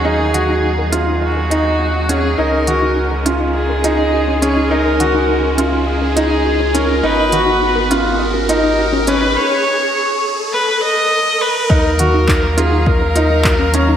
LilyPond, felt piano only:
\new Staff \with { instrumentName = "Felt piano" } { \time 4/4 \key ees \minor \tempo 4 = 103 ees'8 ges'4 f'4 ees'4 des'8 | ees'8 ges'4 f'4 ees'4 des'8 | ees'8 ges'4 f'4 ees'4 des'8 | ees'8 ges'4 f'4 ees'4 des'8 |
r1 | ees'8 ges'4 f'4 ees'4 des'8 | }